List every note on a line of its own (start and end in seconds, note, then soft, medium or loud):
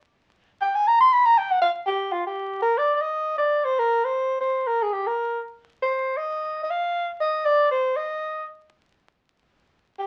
0.61 0.76 G5 medium
0.75 0.89 G#5 medium
0.88 1.00 A#5 loud
1.00 1.14 C6 loud
1.13 1.27 B5 loud
1.25 1.39 A#5 loud
1.38 1.53 G5 medium
1.51 1.60 F#5 loud
1.61 1.69 F5 medium
1.87 2.14 G4 loud
2.12 2.26 F4 medium
2.27 2.59 G4 medium
2.62 2.79 A#4 medium
2.77 2.94 D5 medium
2.94 3.03 D5 medium
3.02 3.37 D#5 medium
3.38 3.66 D5 medium
3.64 3.80 C5 medium
3.79 4.06 A#4 medium
4.05 4.39 C5 medium
4.41 4.68 C5 medium
4.67 4.84 A#4 medium
4.82 4.94 G#4 medium
4.93 5.08 G4 medium
5.07 5.41 A#4 medium
5.82 6.18 C5 medium
6.17 6.61 D#5 medium
6.63 6.72 D#5 medium
6.70 7.08 F5 medium
7.20 7.47 D#5 medium
7.45 7.69 D5 medium
7.71 7.97 C5 medium
7.96 8.45 D#5 medium
9.99 10.07 G4 medium